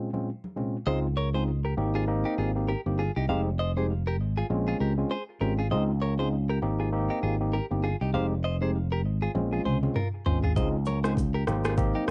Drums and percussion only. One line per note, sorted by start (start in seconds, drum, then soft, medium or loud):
0.14 high conga medium
0.44 high conga medium
0.57 low conga medium
9.35 high tom medium
9.65 mid tom medium
9.83 mid tom medium
9.96 mid tom medium
10.26 floor tom loud
10.44 floor tom medium
10.56 kick loud
10.56 shaker medium
10.85 high conga medium
10.85 shaker medium
11.04 cross-stick medium
11.04 shaker medium
11.17 kick medium
11.17 low conga medium
11.17 shaker medium
11.47 cross-stick medium
11.47 high conga medium
11.47 low conga medium
11.47 shaker soft
11.65 cross-stick medium
11.65 shaker medium
11.77 kick loud
11.77 low conga medium
11.77 shaker medium
11.96 high conga medium
12.08 cross-stick medium